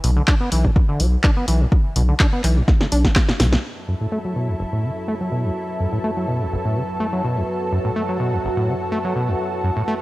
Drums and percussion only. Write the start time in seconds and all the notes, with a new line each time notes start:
0.04 open hi-hat
0.27 kick, clap
0.52 open hi-hat
0.65 kick
0.76 kick
1.00 open hi-hat
1.23 kick, clap
1.48 open hi-hat
1.72 kick
1.96 open hi-hat
2.19 kick, clap
2.44 clap, open hi-hat
2.68 kick, snare
2.81 snare
2.92 open hi-hat
3.05 kick, snare
3.15 kick, snare, clap, open hi-hat
3.29 snare
3.40 snare, open hi-hat
3.53 snare